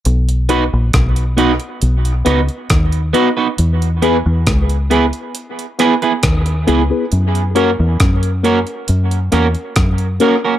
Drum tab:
HH |xxx-xxxxxxxxxxx-|xxx-xxxxxxxxxxx-|xxx-xxxxxxxxxxx-|
SD |----r-----r-r---|----r-----r-r---|----r-----r-r---|
BD |----o-------o---|----o-------o---|----o-------o---|